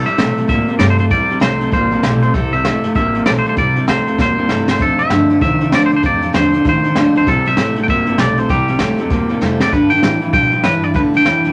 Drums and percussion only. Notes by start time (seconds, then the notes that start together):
0.06 closed hi-hat
0.18 snare, closed hi-hat
0.37 closed hi-hat
0.49 kick, closed hi-hat
0.68 closed hi-hat
0.79 snare, closed hi-hat
0.98 closed hi-hat
1.11 kick, closed hi-hat
1.30 closed hi-hat
1.41 snare, closed hi-hat
1.61 closed hi-hat
1.72 kick, closed hi-hat
1.92 closed hi-hat
2.03 snare, closed hi-hat
2.22 closed hi-hat
2.34 kick, closed hi-hat
2.53 closed hi-hat
2.65 snare, closed hi-hat
2.83 closed hi-hat
2.95 kick, closed hi-hat
3.15 closed hi-hat
3.26 snare, closed hi-hat
3.45 closed hi-hat
3.57 kick, closed hi-hat
3.76 closed hi-hat
3.88 snare, closed hi-hat
4.07 closed hi-hat
4.18 kick, snare
4.49 snare
4.68 snare
4.80 kick, closed hi-hat
4.99 closed hi-hat
5.10 snare, closed hi-hat
5.30 closed hi-hat
5.41 kick, closed hi-hat
5.60 closed hi-hat
5.72 snare, closed hi-hat
5.91 closed hi-hat
6.03 kick, closed hi-hat
6.22 closed hi-hat
6.34 snare, closed hi-hat
6.53 closed hi-hat
6.65 kick, closed hi-hat
6.84 closed hi-hat
6.96 snare, closed hi-hat
7.15 closed hi-hat
7.27 kick, closed hi-hat
7.46 closed hi-hat
7.57 snare, closed hi-hat
7.76 closed hi-hat
7.88 kick, closed hi-hat
8.06 closed hi-hat
8.18 snare, closed hi-hat
8.37 closed hi-hat
8.49 kick, closed hi-hat
8.68 closed hi-hat
8.79 snare, closed hi-hat
8.98 closed hi-hat
9.10 kick, closed hi-hat
9.30 closed hi-hat
9.41 snare
9.60 snare
9.72 kick, closed hi-hat
9.91 closed hi-hat
10.03 snare, closed hi-hat
10.21 closed hi-hat
10.33 kick, closed hi-hat
10.51 closed hi-hat
10.64 snare, closed hi-hat
10.83 closed hi-hat
10.94 kick, closed hi-hat
11.14 closed hi-hat
11.25 snare, closed hi-hat
11.44 closed hi-hat